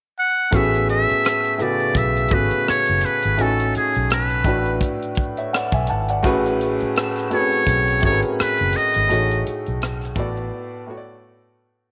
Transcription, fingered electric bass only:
0, 0, Header, 1, 3, 480
1, 0, Start_track
1, 0, Key_signature, 3, "major"
1, 0, Tempo, 714286
1, 355, Time_signature, 4, 2, 24, 8
1, 8007, End_track
2, 0, Start_track
2, 0, Title_t, "Fingered electric bass"
2, 0, Program_c, 0, 33
2, 362, Note_on_c, 0, 33, 84
2, 707, Note_off_c, 0, 33, 0
2, 1318, Note_on_c, 0, 35, 77
2, 1537, Note_off_c, 0, 35, 0
2, 1561, Note_on_c, 0, 32, 78
2, 1683, Note_off_c, 0, 32, 0
2, 1944, Note_on_c, 0, 30, 74
2, 2034, Note_off_c, 0, 30, 0
2, 2186, Note_on_c, 0, 32, 83
2, 2290, Note_off_c, 0, 32, 0
2, 2290, Note_on_c, 0, 33, 99
2, 2504, Note_off_c, 0, 33, 0
2, 2664, Note_on_c, 0, 35, 70
2, 2975, Note_off_c, 0, 35, 0
2, 2995, Note_on_c, 0, 33, 85
2, 3216, Note_off_c, 0, 33, 0
2, 3854, Note_on_c, 0, 35, 83
2, 3949, Note_off_c, 0, 35, 0
2, 3972, Note_on_c, 0, 32, 81
2, 4202, Note_off_c, 0, 32, 0
2, 4202, Note_on_c, 0, 33, 92
2, 4547, Note_off_c, 0, 33, 0
2, 5161, Note_on_c, 0, 35, 74
2, 5379, Note_off_c, 0, 35, 0
2, 5405, Note_on_c, 0, 32, 82
2, 5525, Note_off_c, 0, 32, 0
2, 5785, Note_on_c, 0, 30, 78
2, 5874, Note_off_c, 0, 30, 0
2, 6023, Note_on_c, 0, 32, 78
2, 6113, Note_off_c, 0, 32, 0
2, 6129, Note_on_c, 0, 33, 94
2, 6343, Note_off_c, 0, 33, 0
2, 6505, Note_on_c, 0, 35, 71
2, 6815, Note_off_c, 0, 35, 0
2, 6835, Note_on_c, 0, 33, 92
2, 7056, Note_off_c, 0, 33, 0
2, 8007, End_track
3, 0, Start_track
3, 0, Title_t, "Muted fingered electric bass strokes"
3, 748, Note_on_c, 9, 29, 36
3, 815, Note_off_c, 9, 29, 0
3, 1810, Note_on_c, 9, 29, 44
3, 1877, Note_off_c, 9, 29, 0
3, 2530, Note_on_c, 9, 29, 39
3, 2597, Note_off_c, 9, 29, 0
3, 4586, Note_on_c, 9, 29, 42
3, 4653, Note_off_c, 9, 29, 0
3, 5650, Note_on_c, 9, 29, 46
3, 5717, Note_off_c, 9, 29, 0
3, 8007, End_track
0, 0, End_of_file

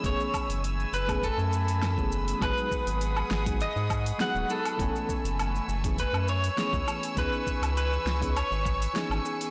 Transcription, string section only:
0, 0, Header, 1, 2, 480
1, 0, Start_track
1, 0, Tempo, 594059
1, 33, Time_signature, 4, 2, 24, 8
1, 7680, End_track
2, 0, Start_track
2, 0, Title_t, "String section"
2, 0, Program_c, 0, 48
2, 0, Note_on_c, 0, 83, 73
2, 0, Note_on_c, 0, 88, 88
2, 29, Note_on_c, 0, 57, 80
2, 30, Note_on_c, 0, 80, 72
2, 1921, Note_off_c, 0, 88, 0
2, 1932, Note_off_c, 0, 57, 0
2, 1932, Note_off_c, 0, 80, 0
2, 1955, Note_on_c, 0, 78, 76
2, 1955, Note_on_c, 0, 87, 89
2, 1962, Note_on_c, 0, 68, 83
2, 3855, Note_off_c, 0, 78, 0
2, 3855, Note_off_c, 0, 87, 0
2, 3858, Note_off_c, 0, 68, 0
2, 3877, Note_on_c, 0, 57, 81
2, 3879, Note_on_c, 0, 88, 88
2, 3880, Note_on_c, 0, 80, 74
2, 5759, Note_off_c, 0, 83, 0
2, 5776, Note_off_c, 0, 57, 0
2, 5794, Note_on_c, 0, 71, 79
2, 5795, Note_on_c, 0, 85, 76
2, 7680, Note_off_c, 0, 71, 0
2, 7680, Note_off_c, 0, 80, 0
2, 7680, Note_off_c, 0, 85, 0
2, 7680, Note_off_c, 0, 88, 0
2, 7680, End_track
0, 0, End_of_file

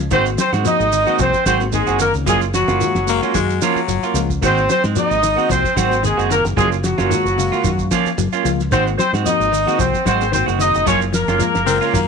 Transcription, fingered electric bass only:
0, 0, Header, 1, 3, 480
1, 0, Start_track
1, 0, Tempo, 537153
1, 103, Time_signature, 4, 2, 24, 8
1, 10791, End_track
2, 0, Start_track
2, 0, Title_t, "Fingered electric bass"
2, 0, Program_c, 0, 33
2, 102, Note_on_c, 0, 32, 106
2, 320, Note_off_c, 0, 32, 0
2, 469, Note_on_c, 0, 44, 94
2, 571, Note_off_c, 0, 44, 0
2, 714, Note_on_c, 0, 32, 88
2, 931, Note_off_c, 0, 32, 0
2, 1065, Note_on_c, 0, 36, 91
2, 1181, Note_off_c, 0, 36, 0
2, 1302, Note_on_c, 0, 32, 102
2, 1638, Note_off_c, 0, 32, 0
2, 1676, Note_on_c, 0, 30, 86
2, 1893, Note_off_c, 0, 30, 0
2, 1915, Note_on_c, 0, 37, 91
2, 2016, Note_off_c, 0, 37, 0
2, 2026, Note_on_c, 0, 30, 97
2, 2361, Note_off_c, 0, 30, 0
2, 2393, Note_on_c, 0, 30, 90
2, 2495, Note_off_c, 0, 30, 0
2, 2633, Note_on_c, 0, 30, 87
2, 2852, Note_off_c, 0, 30, 0
2, 2991, Note_on_c, 0, 42, 95
2, 3207, Note_off_c, 0, 42, 0
2, 3466, Note_on_c, 0, 30, 86
2, 3585, Note_off_c, 0, 30, 0
2, 3699, Note_on_c, 0, 37, 98
2, 3922, Note_off_c, 0, 37, 0
2, 3953, Note_on_c, 0, 32, 101
2, 4170, Note_off_c, 0, 32, 0
2, 4325, Note_on_c, 0, 44, 90
2, 4424, Note_off_c, 0, 44, 0
2, 4564, Note_on_c, 0, 32, 79
2, 4780, Note_off_c, 0, 32, 0
2, 4916, Note_on_c, 0, 36, 91
2, 5032, Note_off_c, 0, 36, 0
2, 5151, Note_on_c, 0, 32, 104
2, 5487, Note_off_c, 0, 32, 0
2, 5514, Note_on_c, 0, 30, 83
2, 5735, Note_off_c, 0, 30, 0
2, 5758, Note_on_c, 0, 30, 85
2, 5861, Note_off_c, 0, 30, 0
2, 5869, Note_on_c, 0, 30, 102
2, 6206, Note_off_c, 0, 30, 0
2, 6239, Note_on_c, 0, 30, 89
2, 6341, Note_off_c, 0, 30, 0
2, 6479, Note_on_c, 0, 30, 84
2, 6698, Note_off_c, 0, 30, 0
2, 6828, Note_on_c, 0, 42, 85
2, 7048, Note_off_c, 0, 42, 0
2, 7308, Note_on_c, 0, 30, 95
2, 7427, Note_off_c, 0, 30, 0
2, 7550, Note_on_c, 0, 37, 96
2, 7768, Note_off_c, 0, 37, 0
2, 7790, Note_on_c, 0, 32, 112
2, 8008, Note_off_c, 0, 32, 0
2, 8157, Note_on_c, 0, 44, 88
2, 8259, Note_off_c, 0, 44, 0
2, 8398, Note_on_c, 0, 32, 81
2, 8615, Note_off_c, 0, 32, 0
2, 8751, Note_on_c, 0, 36, 92
2, 8867, Note_off_c, 0, 36, 0
2, 8990, Note_on_c, 0, 32, 104
2, 9322, Note_off_c, 0, 32, 0
2, 9359, Note_on_c, 0, 30, 90
2, 9574, Note_off_c, 0, 30, 0
2, 9604, Note_on_c, 0, 30, 86
2, 9700, Note_off_c, 0, 30, 0
2, 9709, Note_on_c, 0, 30, 93
2, 10040, Note_off_c, 0, 30, 0
2, 10077, Note_on_c, 0, 30, 90
2, 10175, Note_off_c, 0, 30, 0
2, 10320, Note_on_c, 0, 30, 86
2, 10533, Note_off_c, 0, 30, 0
2, 10664, Note_on_c, 0, 42, 92
2, 10791, Note_off_c, 0, 42, 0
2, 10791, End_track
3, 0, Start_track
3, 0, Title_t, "Muted fingered electric bass strokes"
3, 583, Note_on_c, 9, 29, 38
3, 673, Note_off_c, 9, 29, 0
3, 1193, Note_on_c, 9, 29, 36
3, 1282, Note_off_c, 9, 29, 0
3, 3356, Note_on_c, 9, 29, 36
3, 3445, Note_off_c, 9, 29, 0
3, 3596, Note_on_c, 9, 29, 37
3, 3685, Note_off_c, 9, 29, 0
3, 4439, Note_on_c, 9, 29, 38
3, 4528, Note_off_c, 9, 29, 0
3, 5041, Note_on_c, 9, 29, 36
3, 5130, Note_off_c, 9, 29, 0
3, 7200, Note_on_c, 9, 29, 37
3, 7289, Note_off_c, 9, 29, 0
3, 8275, Note_on_c, 9, 29, 39
3, 8365, Note_off_c, 9, 29, 0
3, 8880, Note_on_c, 9, 29, 36
3, 8969, Note_off_c, 9, 29, 0
3, 10791, End_track
0, 0, End_of_file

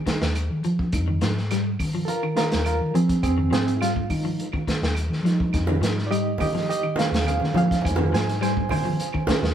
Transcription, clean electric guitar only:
0, 0, Header, 1, 2, 480
1, 0, Start_track
1, 0, Key_signature, -4, "minor"
1, 0, Tempo, 576369
1, 771, Time_signature, 4, 2, 24, 8
1, 7947, End_track
2, 0, Start_track
2, 0, Title_t, "Clean electric guitar"
2, 0, Program_c, 0, 27
2, 53, Note_on_c, 0, 51, 69
2, 220, Note_off_c, 0, 51, 0
2, 538, Note_on_c, 0, 53, 68
2, 703, Note_off_c, 0, 53, 0
2, 897, Note_on_c, 0, 51, 70
2, 977, Note_off_c, 0, 51, 0
2, 1013, Note_on_c, 0, 53, 72
2, 1180, Note_off_c, 0, 53, 0
2, 1260, Note_on_c, 0, 55, 85
2, 1425, Note_off_c, 0, 55, 0
2, 1621, Note_on_c, 0, 53, 68
2, 1787, Note_off_c, 0, 53, 0
2, 1859, Note_on_c, 0, 51, 68
2, 1939, Note_off_c, 0, 51, 0
2, 1973, Note_on_c, 0, 51, 65
2, 2140, Note_off_c, 0, 51, 0
2, 2459, Note_on_c, 0, 53, 74
2, 2624, Note_off_c, 0, 53, 0
2, 2813, Note_on_c, 0, 51, 73
2, 2895, Note_off_c, 0, 51, 0
2, 2923, Note_on_c, 0, 53, 70
2, 3093, Note_off_c, 0, 53, 0
2, 3180, Note_on_c, 0, 55, 78
2, 3344, Note_off_c, 0, 55, 0
2, 3538, Note_on_c, 0, 53, 69
2, 3705, Note_off_c, 0, 53, 0
2, 3775, Note_on_c, 0, 51, 68
2, 3856, Note_off_c, 0, 51, 0
2, 3897, Note_on_c, 0, 51, 66
2, 4063, Note_off_c, 0, 51, 0
2, 4373, Note_on_c, 0, 53, 68
2, 4540, Note_off_c, 0, 53, 0
2, 4740, Note_on_c, 0, 51, 71
2, 4819, Note_off_c, 0, 51, 0
2, 4844, Note_on_c, 0, 53, 65
2, 5014, Note_off_c, 0, 53, 0
2, 5085, Note_on_c, 0, 55, 88
2, 5255, Note_off_c, 0, 55, 0
2, 5453, Note_on_c, 0, 53, 69
2, 5621, Note_off_c, 0, 53, 0
2, 5691, Note_on_c, 0, 51, 67
2, 5773, Note_off_c, 0, 51, 0
2, 5820, Note_on_c, 0, 51, 71
2, 5984, Note_off_c, 0, 51, 0
2, 6292, Note_on_c, 0, 53, 72
2, 6459, Note_off_c, 0, 53, 0
2, 6652, Note_on_c, 0, 51, 69
2, 6734, Note_off_c, 0, 51, 0
2, 6771, Note_on_c, 0, 53, 65
2, 6938, Note_off_c, 0, 53, 0
2, 7005, Note_on_c, 0, 55, 89
2, 7174, Note_off_c, 0, 55, 0
2, 7373, Note_on_c, 0, 53, 69
2, 7541, Note_off_c, 0, 53, 0
2, 7611, Note_on_c, 0, 51, 68
2, 7693, Note_off_c, 0, 51, 0
2, 7729, Note_on_c, 0, 51, 69
2, 7897, Note_off_c, 0, 51, 0
2, 7947, End_track
0, 0, End_of_file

